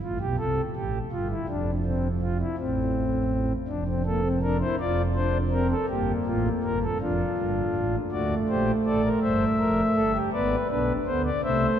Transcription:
0.02 A1 A2 F4
0.20 B1 B2 G4
0.38 C2 C3 A4
0.76 A1 A2 G4
1.11 G1 G2 F4
1.30 E4
1.48 F1 F2 D4
1.85 C4
2.22 F4
2.40 E4
2.58 A1 A2 C4
3.68 F1 F2 D4
3.87 C4
4.05 A#3 A4
4.24 C4
4.42 D4 A#4
4.61 E4 C5
4.80 F1 F2 F4 D5
5.15 D4 C5
5.52 C4 A#4
5.70 A4
5.89 G1 G2 A#3 G4
6.26 A1 A2 F4
6.63 G1 G2 A#4
6.82 A4
7.00 F1 F2 D4 F4
7.37 G1 G2
7.74 A1 A2
8.11 D2 D3 A3 F#4 D5
8.49 A#1 A#2 G4 C5
8.86 A1 A2 A4 D5
9.04 A#4
9.22 G1 G2 C5 E5
9.58 F1 F2 A#4
9.95 G1 G2 A4
10.13 G4
10.32 G#1 G#2 B3 B4 D5
10.69 B1 B2 D4 B4
11.06 D2 D3 B3 C5
11.25 D5
11.44 C2 C3 A3 C5 E5

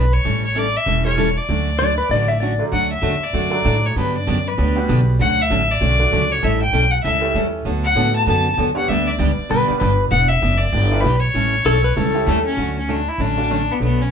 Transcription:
Already playing: B1 B4
0.13 C#5
0.25 A1 E3 G3 C#4 E4 A4
0.45 C#5
0.55 E3 G3 C#4 E4 A4 D5
0.77 E5
0.86 E1 E3 G3 C#4 E4 A4
1.04 E3 G3 A3 C#4 C#5
1.17 E3 G3 C#4 E4 A4
1.37 D5
1.49 D2 D3 F#3 A3 C#4 F#4
1.79 D3 F#3 A3 C#4 F#4 D5
1.98 B4
2.09 A1 D3 F#3 A3 C#4 F#4 D5
2.28 E5
2.40 D3 F#3 A3 C#4 F#4 D5
2.59 D3 F#3 A3 D4
2.72 D2 D3 F#3 A3 D4 F#4 F#5
2.92 E5
3.02 E2 D3 F#3 A3 D4 F#4
3.24 D5
3.33 F#2 D3 F#3 A3 D4 F#4
3.50 F#3 A3 D4 F#4 A4
3.65 A2 D3 F#3 A3 D4 F#4
3.85 C#5
3.96 G2 D3 F#3 B3 D4 G4 B4
4.17 D5
4.27 F#2 D3 F#3 B3 D4 G4
4.48 B4
4.57 D2 D3 F#3 B3 D4 G4
4.75 G3 B3 D4 F#4 G4
4.88 B1 D3 F#3 B3 D4 G4
5.19 D2 D3 F#3 A3 C#4 F#4 F#5
5.42 E5
5.50 A1 D3 F#3 A3 C#4 F#4
5.71 D5
5.80 B1 D3 F#3 A3 C#4 F#4
5.99 A3 D4 F#4 A4
6.11 C#2 D3 F#3 A3 C#4 F#4
6.32 C#5
6.42 A1 E3 G3 C#4 E4 A4 E5
6.62 G5
6.73 B1 E3 G3 C#4 E4 A4
6.91 F#5
7.03 C#2 E3 G3 C#4 E4 A4 E5
7.21 A3 C#4 E4 G4 A4
7.34 E2 E3 G3 C#4 E4 A4
7.65 D2 D3 F#3 B3 F#4 A4
7.84 F#5
7.95 A2 D3 F#3 A3 B3 D4 F#4 A4
8.15 A5
8.26 F#2 D3 F#3 B3 F#4 A4 A5
8.57 E2 D3 F#3 B3 F#4 A4
8.75 G3 B3 D4 G4 C#5 F#5
8.88 D2 D3 G3 B3 D4 G4 E5
9.08 D5
9.18 C#2 D3 G3 B3 D4 G4 B4
9.38 muted upright bass stroke
9.49 B1 D3 G3 B3 D4 G4 B4
9.67 G3 B3 D4 G4 B4, muted upright bass stroke
9.80 G1 D3 G3 B3 D4 G4 B4
10.10 E1 E3 B3 D4 G4 F#5
10.29 E5
10.41 F#1 E3 B3 D4 G4
10.58 D5
10.72 G1 E3 B3 D4 G4
10.91 G3 B3 D4 E4 G4
11.01 B1 E3 B3 D4 B4
11.05 G4
11.20 C#5
11.34 A1 E3 G3 C#4 E4 A4
11.65 B1 E3 G3 C#4 E4 A4
11.84 B4
11.96 C#2 E3 G3 C#4 E4 A4
12.14 G3 A3 C#4 E4 G4
12.26 D#2 E3 G3 A3 C#4 E4 A4
12.46 C#4
12.57 D2 D3 F#3 A3 C#4 F#4
12.78 C#4
12.88 D3 F#3 A3 C#4 D4 F#4
13.08 E4
13.18 A1 D3 F#3 A3 C#4 D4 F#4
13.37 A3 C#4 D4 F#4
13.50 D3 F#3 A3 C#4 F#4
13.71 B3
13.80 B1 B2 F#3 A3 B3 D4 F#4
14.01 C#4

